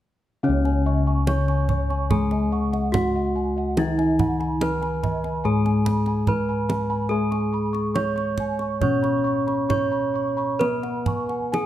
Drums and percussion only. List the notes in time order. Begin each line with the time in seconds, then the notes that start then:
0.65 kendang slap
1.27 kendang high
1.48 kendang slap
1.69 kendang low
1.90 kendang slap
2.11 kendang low
2.31 kendang slap
2.73 kendang slap
2.94 kendang high, kendang low
3.77 kendang high
3.99 kendang slap
4.19 kendang low
4.41 kendang slap
4.61 kendang high
4.83 kendang slap
5.04 kendang low
5.24 kendang slap
5.66 kendang slap
5.86 kendang low
6.06 kendang slap
6.27 kendang low
6.70 kendang high
7.32 kendang slap
7.74 kendang slap
7.96 kendang high
8.17 kendang slap
8.38 kendang low
8.59 kendang slap
8.82 kendang low
9.04 kendang slap
9.48 kendang slap
9.70 kendang high, kendang low
10.61 kendang high
10.83 kendang slap
11.06 kendang low
11.29 kendang slap
11.54 kendang high